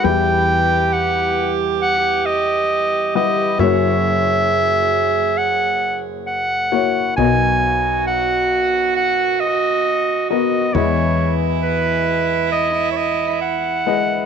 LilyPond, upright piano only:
<<
  \new Staff \with { instrumentName = "Upright piano" } { \time 4/4 \key e \lydian \tempo 4 = 67 <g e' g' b'>4. r2 <g e' b' fis''>8 | <ais e' fis' cis''>4. r2 <ais e' fis' cis''>8 | <b fis' ais' dis''>4. r2 <b fis' ais' dis''>8 | <gis e' b' dis''>4. r2 <gis e' b' dis''>8 | }
  \new Staff \with { instrumentName = "Upright piano" } { \clef bass \time 4/4 \key e \lydian <e, e>1 | <fis,, fis,>1 | <b,, b,>1 | <e, e>1 | }
>>